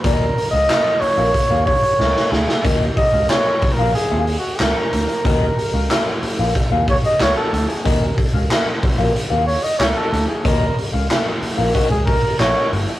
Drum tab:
HH |x-o-x-o-x-ox----|x-o-x-o-x-o-x-xx|x-o-x-o-x-oxx-xx|x-o-x-o-x-oxx-x-|
CP |----x-----------|----x-------x---|----x-------x---|----x-------x---|
SD |----o-------oooo|----o-------o---|----o-------o---|----o-------o---|
BD |o-------o-o-----|o-o---o---------|o-------o-o-----|o-o---o---------|

HH |x-o-x-o-x-o-x-o-|
CP |----x-------x---|
SD |----o-------o---|
BD |o-------o-o-----|